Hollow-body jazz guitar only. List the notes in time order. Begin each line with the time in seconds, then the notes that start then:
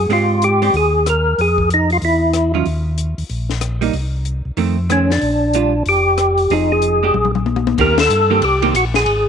0.10 G#3 C4 D4 G4
0.62 G#3 C4 D4 G4
2.54 D#3 F#3 C#4 F4
3.81 G3 A#3 D#4
4.57 D#3 A3 C4
4.89 D#3 A3 C4
5.55 G3 D4 F4
6.51 F3 C4 D#4 G#4
7.03 G#3 D4 G4
7.79 D#3 A#3 C4 G4
8.30 D#3 A#3 C4 G4
8.62 D#3 A#3 C4 G4